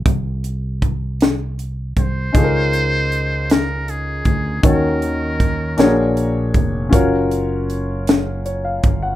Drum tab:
HH |xxxxxx|xxxxxx|xxxxxx|xxxxxx|
SD |---o--|---o--|---o--|---o--|
BD |o-o--o|o----o|o-o--o|o----o|